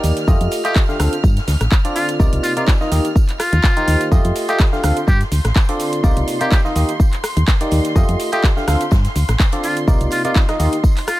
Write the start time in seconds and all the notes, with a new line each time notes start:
Already playing: D#3 A#3 D#4 G4 D5 F6
0.03 D#2, open hi-hat, tambourine, cabasa
0.17 snare, closed hi-hat, cabasa
0.28 F2 A3 F4 G4 D#5, kick, tambourine, cabasa
0.41 F2, closed hi-hat, cabasa
0.51 open hi-hat, tambourine, cabasa
0.65 A3 F4 G4 D#5, snare, closed hi-hat, cabasa
0.76 kick, snare, clap, tambourine, cabasa
0.89 D3 A3 F4 G4 F5, snare, cabasa
1.00 D2 D3 C4 F4 A4 F5, cross-stick, open hi-hat, tambourine, cabasa
1.13 closed hi-hat, cabasa
1.24 G2, kick, tambourine, cabasa
1.37 snare, closed hi-hat, cabasa
1.47 D2, snare, open hi-hat, tambourine, cabasa
1.61 A1, cross-stick, snare, closed hi-hat, cabasa
1.72 kick, clap, tambourine, cabasa
1.85 D3 C4 F4 A4 D5, closed hi-hat, cabasa
1.96 F4, open hi-hat, tambourine, cabasa
2.08 snare, closed hi-hat, cabasa
2.20 C2 C3 A#3 D#4 F4 D5, kick, tambourine, cabasa
2.33 C2, closed hi-hat, cabasa
2.43 F4, open hi-hat, tambourine, cabasa
2.57 C3 A#3 D#4 F4 D5, closed hi-hat, cabasa
2.68 kick, snare, clap, tambourine, cabasa
2.80 D#3 A#3 D#4 F4 D#5, snare, cabasa
2.92 D#2 D#3 A#3 D#4 G4 D#5, open hi-hat, tambourine, cabasa
3.05 closed hi-hat, cabasa
3.16 kick, tambourine, cabasa
3.29 clap, closed hi-hat, cabasa
3.40 F4, cross-stick, open hi-hat, tambourine, cabasa
3.53 D#2, closed hi-hat, cabasa
3.64 kick, snare, clap, tambourine, cabasa
3.77 D#3 A#3 D#4 G4 C5, closed hi-hat, cabasa
3.88 D#2, open hi-hat, tambourine, cabasa
4.01 closed hi-hat, cabasa
4.12 F2 A3 F4 G4 D#5 C6, kick, tambourine, cabasa
4.25 F2, closed hi-hat, cabasa
4.36 open hi-hat, tambourine, cabasa
4.49 A3 F4 G4 D#5, snare, closed hi-hat, cabasa
4.59 kick, snare, clap, tambourine, cabasa
4.73 D3 A3 F4 G4 F5, snare, cabasa
4.83 D2 D3 C4 F4 A4 F5, cross-stick, open hi-hat, tambourine, cabasa
4.97 closed hi-hat, cabasa
5.08 G2 G4, kick, tambourine, cabasa
5.21 snare, closed hi-hat, cabasa
5.32 D2, open hi-hat, tambourine, cabasa
5.45 A1, cross-stick, snare, closed hi-hat, cabasa
5.56 kick, snare, clap, tambourine, cabasa
5.69 D3 C4 F4 A4 D5, closed hi-hat, cabasa
5.79 open hi-hat, tambourine, cabasa
5.93 closed hi-hat, cabasa
6.04 C2 C3 A#3 D#4 F4 D5, kick, tambourine, cabasa
6.17 C2, closed hi-hat, cabasa
6.28 open hi-hat, tambourine, cabasa
6.41 C3 A#3 D#4 F4 G4 D5, closed hi-hat, cabasa
6.52 G4, kick, snare, clap, tambourine, cabasa
6.65 D#3 A#3 D#4 F4 D#5, snare, cabasa
6.75 D#2 D#3 A#3 D#4 G4 D#5, open hi-hat, tambourine, cabasa
6.89 closed hi-hat, cabasa
7.00 kick, tambourine, cabasa
7.13 clap, closed hi-hat, cabasa
7.24 cross-stick, open hi-hat, tambourine, cabasa
7.37 D#2, closed hi-hat, cabasa
7.47 kick, snare, clap, tambourine, cabasa
7.61 D#3 A#3 D#4 G4 D5, closed hi-hat, cabasa
7.71 D#2, open hi-hat, tambourine, cabasa
7.84 snare, closed hi-hat, cabasa
7.96 F2 A3 F4 G4 D#5, kick, tambourine, cabasa
8.09 F2, closed hi-hat, cabasa
8.19 open hi-hat, tambourine, cabasa
8.33 A3 F4 G4 D#5, snare, closed hi-hat, cabasa
8.44 kick, snare, clap, tambourine, cabasa
8.57 D3 A3 F4 G4 F5, snare, cabasa
8.68 D2 D3 C4 F4 A4 F5, cross-stick, snare, open hi-hat, tambourine, cabasa
8.81 closed hi-hat, cabasa
8.91 G2, kick, snare, tambourine, cabasa
9.05 snare, closed hi-hat, cabasa
9.16 D2, open hi-hat, tambourine, cabasa
9.29 A1, cross-stick, snare, closed hi-hat, cabasa
9.40 kick, snare, clap, tambourine, cabasa
9.52 D3 C4 F4 A4 D5, closed hi-hat, cabasa
9.63 F4, open hi-hat, tambourine, cabasa
9.77 closed hi-hat, cabasa
9.88 C2 C3 A#3 D#4 F4 D5, kick, tambourine, cabasa
10.01 C2, closed hi-hat, cabasa
10.11 F4, open hi-hat, tambourine, cabasa
10.25 C3 A#3 D#4 F4 D5, closed hi-hat, cabasa
10.35 kick, snare, clap, tambourine, cabasa
10.48 D#3 A#3 D#4 F4 D#5, cross-stick, snare, closed hi-hat, cabasa
10.60 D#2 D#3 A#3 D#4 G4 D#5, open hi-hat, tambourine, cabasa
10.73 closed hi-hat, cabasa
10.84 kick, tambourine, cabasa
10.97 clap, open hi-hat, cabasa
11.07 F4, cross-stick, open hi-hat, tambourine, cabasa